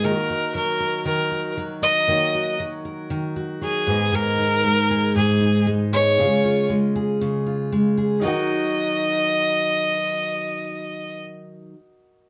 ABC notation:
X:1
M:4/4
L:1/8
Q:"Swing 16ths" 1/4=117
K:Ebm
V:1 name="Violin"
B2 B2 B2 z e- | e2 z4 A2 | B4 A2 z d- | d2 z6 |
e8- | e8 |]
V:2 name="Upright piano"
[B,EFGe]8 | [B,EGd]6- [B,EGd] [CEAe]- | [CEAe]6- [CEAe] [CEAe] | [DFAf]8 |
[EGBg]8- | [EGBg]8 |]
V:3 name="Steel-string acoustic guitar"
[E,B] G G, B E, G G, B | [E,B] G G, B E, G G, A,, | [A,,A] E A, A A,, E A, A | [D,A] F A, A D, F A, A |
[E,G,EGB]8- | [E,G,EGB]8 |]